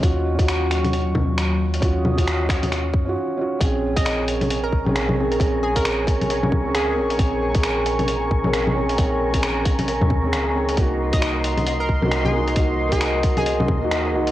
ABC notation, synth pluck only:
X:1
M:4/4
L:1/16
Q:"Swing 16ths" 1/4=134
K:Bbm
V:1 name="Synth pluck"
z16 | z16 | z3 e e z4 B2 z4 z | z2 A B2 z6 z A4- |
A2 z12 z2 | z16 | z3 e e z4 B2 z2 A2 z | z3 A2 z2 A3 z6 |]